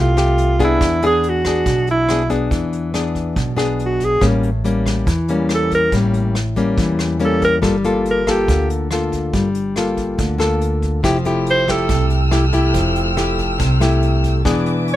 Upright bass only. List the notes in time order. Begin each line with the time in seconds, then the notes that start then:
Already playing: C2
0.81 E2
1.66 B1
2.51 E2
3.36 B1
4.21 A1
5.07 E2
5.92 A1
6.77 E2
7.63 G1
8.48 D2
9.33 G1
10.19 D2
11.04 F1
11.89 C2
12.74 F1
13.60 C2
14.45 E1